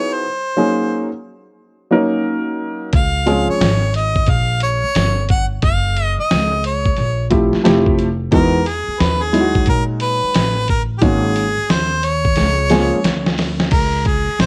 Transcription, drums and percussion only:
2.93 kick loud
2.93 closed hi-hat medium
3.27 closed hi-hat medium
3.61 snare loud
3.61 closed hi-hat medium
3.94 closed hi-hat medium
4.16 kick medium
4.27 kick medium
4.27 closed hi-hat medium
4.61 closed hi-hat medium
4.95 snare loud
4.95 closed hi-hat medium
5.29 kick medium
5.29 closed hi-hat medium
5.62 kick loud
5.62 closed hi-hat medium
5.97 closed hi-hat medium
6.31 snare loud
6.31 closed hi-hat medium
6.64 closed hi-hat medium
6.86 kick medium
6.97 closed hi-hat medium
7.31 kick medium
7.31 closed hi-hat medium
7.53 snare soft
7.65 snare loud
7.65 closed hi-hat medium
7.86 kick medium
7.99 closed hi-hat medium
8.32 kick loud
8.32 closed hi-hat medium
8.66 closed hi-hat medium
9.00 snare loud
9.00 closed hi-hat medium
9.34 closed hi-hat medium
9.55 kick medium
9.66 kick medium
9.66 closed hi-hat medium
10.00 closed hi-hat medium
10.35 snare loud
10.35 closed hi-hat loud
10.68 kick medium
10.68 closed hi-hat medium
11.02 kick loud
11.02 closed hi-hat loud
11.36 closed hi-hat medium
11.70 snare loud
11.70 closed hi-hat medium
12.03 closed hi-hat medium
12.25 kick medium
12.36 snare medium
12.36 closed hi-hat medium
12.70 snare medium
12.70 closed hi-hat medium
13.04 snare medium
13.04 closed hi-hat loud
13.26 snare medium
13.38 snare loud
13.38 open hi-hat soft
13.60 snare medium
13.71 kick loud
13.71 closed hi-hat medium
13.71 crash medium
14.05 kick medium
14.05 closed hi-hat medium
14.40 snare loud
14.40 closed hi-hat medium

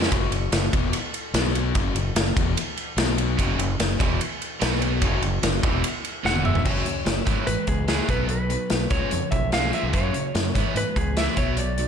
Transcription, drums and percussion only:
0.02 snare medium
0.12 kick loud
0.12 ride medium
0.32 ride medium
0.52 snare loud
0.52 ride medium
0.73 kick loud
0.73 ride medium
0.93 ride loud
1.14 ride medium
1.34 snare loud
1.34 ride medium
1.55 ride medium
1.75 kick loud
1.75 ride medium
1.96 ride medium
2.16 snare loud
2.16 ride medium
2.37 kick loud
2.37 ride medium
2.57 ride loud
2.77 ride medium
2.98 snare loud
2.98 ride medium
3.18 ride medium
3.39 kick medium
3.39 ride medium
3.59 ride medium
3.80 snare medium
3.80 ride medium
4.00 kick loud
4.00 ride medium
4.21 ride loud
4.42 ride medium
4.61 snare loud
4.61 ride medium
4.82 ride medium
5.02 kick loud
5.02 ride medium
5.22 ride medium
5.43 snare loud
5.43 ride medium
5.63 kick loud
5.63 ride medium
5.84 ride loud
6.05 ride medium
6.25 snare medium
6.35 high tom medium
6.45 mid tom medium
6.55 floor tom loud
6.65 kick loud
6.65 crash medium
6.86 closed hi-hat medium
7.06 snare medium
7.06 closed hi-hat medium
7.27 kick loud
7.27 closed hi-hat medium
7.47 closed hi-hat medium
7.67 kick medium
7.67 closed hi-hat medium
7.88 snare loud
7.88 closed hi-hat medium
8.09 kick medium
8.09 closed hi-hat medium
8.29 closed hi-hat medium
8.50 closed hi-hat medium
8.70 snare medium
8.70 closed hi-hat medium
8.90 kick loud
8.90 closed hi-hat medium
9.11 closed hi-hat medium
9.32 kick medium
9.32 closed hi-hat soft
9.52 snare medium
9.52 closed hi-hat medium
9.73 closed hi-hat medium
9.93 kick medium
9.93 closed hi-hat medium
10.14 closed hi-hat medium
10.35 snare medium
10.35 closed hi-hat medium
10.55 kick medium
10.55 closed hi-hat medium
10.76 closed hi-hat medium
10.96 kick medium
10.96 closed hi-hat medium
11.17 snare medium
11.17 closed hi-hat medium
11.37 kick medium
11.37 closed hi-hat medium
11.57 closed hi-hat medium
11.78 closed hi-hat medium

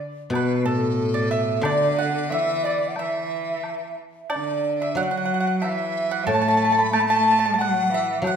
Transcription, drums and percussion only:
0.33 high woodblock medium
1.63 high woodblock medium
2.30 low woodblock soft
2.96 high woodblock medium
3.63 high woodblock soft
4.30 high woodblock medium
5.62 high woodblock medium
6.93 high woodblock medium
8.24 high woodblock medium

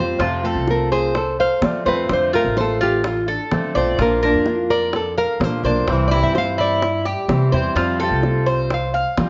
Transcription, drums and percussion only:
0.20 high bongo medium
0.68 high bongo medium
1.15 high bongo medium
1.62 high bongo medium
1.62 low bongo medium
2.10 high bongo medium
2.57 high bongo medium
2.81 high bongo soft
3.04 high bongo medium
3.28 high bongo soft
3.52 high bongo medium
3.52 low bongo medium
3.76 high bongo soft
3.99 high bongo medium
4.46 high bongo medium
4.93 high bongo medium
5.41 high bongo medium
5.41 low bongo medium
5.88 high bongo medium
6.35 high bongo medium
6.59 high bongo soft
6.83 high bongo medium
7.05 high bongo soft
7.29 high bongo medium
7.29 low bongo medium
7.53 high bongo soft
7.77 high bongo medium
8.23 high bongo medium
8.70 high bongo medium
9.17 high bongo medium
9.17 low bongo medium

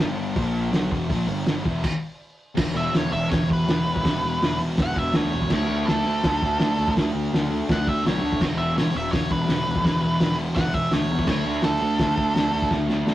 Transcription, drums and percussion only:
0.36 kick loud
0.36 open hi-hat medium
0.73 snare loud
0.73 open hi-hat medium
0.91 kick medium
1.10 kick loud
1.10 open hi-hat medium
1.46 snare loud
1.46 open hi-hat medium
1.65 kick loud
1.84 kick loud
1.84 crash loud
2.57 kick loud
2.57 snare loud
2.57 crash loud
2.94 snare loud
2.94 open hi-hat medium
3.32 kick loud
3.32 snare loud
3.32 open hi-hat medium
3.50 kick medium
3.68 snare loud
3.68 open hi-hat medium
3.96 kick medium
4.05 kick loud
4.05 snare loud
4.05 open hi-hat medium
4.42 snare loud
4.42 open hi-hat medium
4.77 kick loud
4.77 snare loud
4.77 open hi-hat medium
4.96 kick medium
5.13 snare loud
5.13 open hi-hat medium
5.42 kick medium
5.50 kick loud
5.50 snare loud
5.50 crash loud
5.88 snare loud
5.88 open hi-hat medium
6.23 kick loud
6.23 snare loud
6.23 open hi-hat medium
6.42 kick medium
6.59 snare loud
6.59 open hi-hat medium
6.88 kick medium
6.97 kick loud
6.97 snare loud
6.97 open hi-hat medium
7.34 snare loud
7.34 open hi-hat medium
7.69 kick loud
7.69 snare loud
7.69 open hi-hat medium
7.87 kick medium
8.06 snare loud
8.06 open hi-hat medium
8.32 kick medium
8.41 kick loud
8.41 snare loud
8.41 crash loud
8.78 snare loud
8.78 open hi-hat medium
9.13 kick loud
9.13 snare loud
9.13 open hi-hat medium
9.31 kick medium
9.49 snare loud
9.49 open hi-hat medium
9.76 kick medium
9.85 kick loud
9.85 snare loud
9.85 open hi-hat medium
10.20 snare loud
10.20 open hi-hat medium
10.56 kick loud
10.56 snare loud
10.56 open hi-hat medium
10.74 kick medium
10.92 snare loud
10.92 open hi-hat medium
11.19 kick medium
11.27 kick loud
11.27 snare loud
11.27 crash loud
11.62 snare loud
11.62 open hi-hat medium
11.99 kick loud
11.99 snare loud
11.99 open hi-hat medium
12.18 kick medium
12.36 snare loud
12.36 open hi-hat medium
12.62 kick medium
12.71 kick medium
12.71 snare medium
12.89 snare medium
13.07 snare medium

